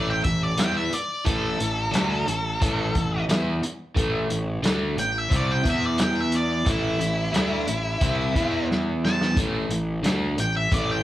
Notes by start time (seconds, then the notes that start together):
Already playing: A1 A2 E3 A3
0.10 G5
0.24 A1 A2 E3 E5, kick, closed hi-hat
0.44 D5
0.58 E2 E3 B3 E4 G5, snare, closed hi-hat
0.77 E5
0.91 D5, muted overdriven electric guitar stroke, muted fingered electric bass stroke, closed hi-hat
1.25 A1 A2 E3 A3 A4, kick, closed hi-hat
1.58 A1 A2 E3, closed hi-hat
1.91 D2 D3 A3 D4, snare, closed hi-hat
2.27 A1 A2 E3, closed hi-hat
2.61 A1 A2 E3 A3, kick, closed hi-hat
2.95 A1 A2 E3, kick, closed hi-hat
3.29 E2 E3 B3 E4, snare, closed hi-hat
3.62 muted fingered electric bass stroke, muted overdriven electric guitar stroke, closed hi-hat
3.95 A1 A2 E3 A3, kick, closed hi-hat
4.30 A1 A2 E3, closed hi-hat
4.63 D2 D3 A3 D4, snare, closed hi-hat
4.96 A1 A2 E3 G5, closed hi-hat
5.18 E5
5.30 C2 C3 G3 C4, kick, closed hi-hat
5.36 D5
5.51 G5
5.64 E2 E3 B3 E4, kick, closed hi-hat
5.70 E5
5.86 D5
5.98 snare, closed hi-hat
6.03 G5
6.20 E5
6.32 closed hi-hat
6.36 D5
6.65 A1 A2 E3 A3, kick, closed hi-hat
6.70 E4
6.99 A1 A2 E3, closed hi-hat
7.32 D2 D3 A3 D4, snare, closed hi-hat
7.67 A1 A2 E3, closed hi-hat
8.01 C2 C3 G3 C4, kick, closed hi-hat
8.35 E2 E3 B3 E4, kick, closed hi-hat
8.71 snare
9.05 A5, snare
9.21 snare
9.36 A1 A2 E3 A3, kick, closed hi-hat
9.69 A1 A2 E3, closed hi-hat
10.03 D2 D3 A3 D4, snare, closed hi-hat
10.37 A1 A2 E3 G5, closed hi-hat
10.57 E5
10.72 A1 A2 E3 A3 D5, kick, closed hi-hat
10.91 G5